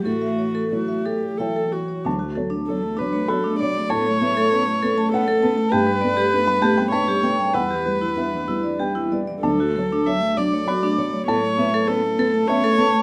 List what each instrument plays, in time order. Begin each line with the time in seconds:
0.05 felt piano A2, ambient pad E3 E4 C#5, cello A3, viola F#4, vibraphone A4
0.22 vibraphone E5
0.38 vibraphone C#5
0.55 vibraphone A4
0.72 felt piano F#3 E4 C#5, viola F#4
0.88 vibraphone E5
1.05 viola G4, vibraphone A4
1.38 felt piano F#3 E4 C#5 G5, viola A4, vibraphone E5
1.56 vibraphone A4
1.72 viola F#4, vibraphone C#5
1.88 vibraphone C#5
2.05 felt piano D2 A5, cello F#3, ambient pad F#3 D4 A4, vibraphone D4
2.19 cello A3, vibraphone F#4
2.35 felt piano F#3 C#5, cello F#3, vibraphone A4
2.50 cello A3, vibraphone D4
2.67 cello F#3, felt piano D4 C#5, viola A4
2.82 cello A3
2.97 cello F#3, felt piano F#3, vibraphone D4, viola B4
3.01 felt piano C#5
3.12 cello A3, vibraphone C#5
3.28 cello F#3, felt piano D4 C#5 B5, vibraphone F#4, viola A4
3.44 cello A3, vibraphone D4
3.59 cello F#3, felt piano F#3 C#5, vibraphone C#5, viola D5
3.75 cello A3, vibraphone C#5
3.90 felt piano A2 A5, ambient pad A3 C#4 B4, cello B3, vibraphone A4, viola C#5
4.06 cello A3, vibraphone C#5
4.21 felt piano A3 B4, cello B3, vibraphone E5
4.37 cello A3, vibraphone A4
4.52 cello B3, felt piano C#4 B4
4.67 cello A3
4.82 felt piano A3 B4, cello B3, vibraphone A4
4.97 cello A3, vibraphone A5
5.12 cello B3, felt piano C#4 B4 F#5, viola A4, vibraphone C#5
5.27 cello A3, vibraphone A4
5.42 felt piano A3 B4, cello B3, vibraphone A5
5.57 cello A3, vibraphone A5
5.72 felt piano G2 G5, cello A3, ambient pad D4, vibraphone G4, viola B4
5.87 cello G3, vibraphone B4
6.01 cello A3, felt piano A3 B4, vibraphone D5
6.17 cello G3, vibraphone G4
6.32 cello A3, felt piano D4 B4
6.47 cello G3, felt piano B5
6.62 cello A3, felt piano A3 B4 A5, vibraphone G4
6.77 cello G3, vibraphone G5, felt piano B5
6.92 cello A3, felt piano D4 B4 A5, vibraphone B4, viola C#5
7.07 cello G3, vibraphone G4
7.23 cello A3, felt piano A3 B4, vibraphone G5
7.39 cello G3, vibraphone G5
7.52 felt piano E2 F#5, ambient pad G3, cello G3, vibraphone E4, viola B4
7.71 cello E3, vibraphone G4
7.85 cello G3, felt piano G3 B4, vibraphone B4
8.02 cello E3, vibraphone E4
8.16 cello G3, felt piano D4 B4 E5
8.32 cello E3
8.48 cello G3, felt piano G3 B4, vibraphone E4
8.63 cello E3, vibraphone D5
8.78 cello G3, felt piano D4 B4 G5, vibraphone G4
8.94 cello E3, vibraphone E4
9.11 cello G3, felt piano G3 B4, vibraphone D5
9.26 cello E3, vibraphone D5
9.42 felt piano D2 A5, cello F#3, ambient pad F#3 A4, vibraphone D4, viola A4
9.59 cello A3, vibraphone F#4
9.75 cello F#3, felt piano F#3 C#5, vibraphone A4
9.90 cello A3, vibraphone D4
10.05 cello F#3, felt piano D4 C#5, viola E5
10.20 cello A3
10.36 cello F#3, felt piano F#3 C#5, vibraphone D4, viola D5
10.52 cello A3, vibraphone C#5
10.66 cello F#3, felt piano D4 C#5 B5, vibraphone F#4
10.81 cello A3, vibraphone D4
10.97 cello F#3, felt piano F#3 C#5, vibraphone C#5
11.12 cello A3, vibraphone C#5
11.26 felt piano A2 A5, ambient pad A3 C#4 B4, cello B3, vibraphone A4, viola C#5
11.42 cello A3, vibraphone C#5
11.57 felt piano A3 B4, cello B3, vibraphone E5
11.72 cello A3, vibraphone A4
11.88 cello B3, felt piano C#4 B4, viola A4
12.03 cello A3
12.19 felt piano A3 B4, cello B3, vibraphone A4
12.34 cello A3, vibraphone A5
12.48 cello B3, felt piano C#4 B4 E5, viola C#5, vibraphone C#5
12.64 cello A3, vibraphone A4
12.78 felt piano A3 B4, cello B3, vibraphone A5
12.93 cello A3, vibraphone A5